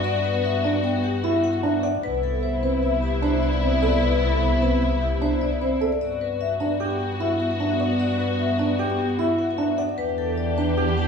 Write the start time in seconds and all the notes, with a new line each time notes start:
Already playing: G2 B3 F#4 D5 F#5
0.04 D5
0.24 B4
0.45 E5
0.64 D4 D5
0.84 G5
1.04 G4
1.24 E4 E5
1.44 F#5
1.63 D4 E5
1.83 D5 F#5
2.03 C2 B3 E4 B4
2.23 A4
2.43 C5
2.63 C4 B4
2.83 E5
3.03 G4
3.22 D4 C5
3.43 D5
3.62 C4 C5
3.82 A4 D5
4.02 B4
4.23 A4
4.43 C5
4.62 C4 B4
4.82 E5
5.02 G4
5.21 D4 C5
5.41 D5
5.61 C4 C5
5.81 A4 D5
6.01 G2 B3 F#4 D5
6.21 B4
6.41 E5
6.60 D4 D5
6.80 G4 G5
7.00 G4
7.20 E4 E5
7.40 F#5
7.60 D4 E5
7.80 D5 F#5
8.00 D5
8.19 B4
8.39 E5
8.59 D4 D5
8.79 G4 G5
8.99 G4
9.19 E4 E5
9.39 F#5
9.58 D4 E5
9.78 D5 F#5
9.98 E2 D4 G4 B4
10.18 A4
10.37 D5
10.58 D4 B4
10.77 G4 F#5
10.97 G4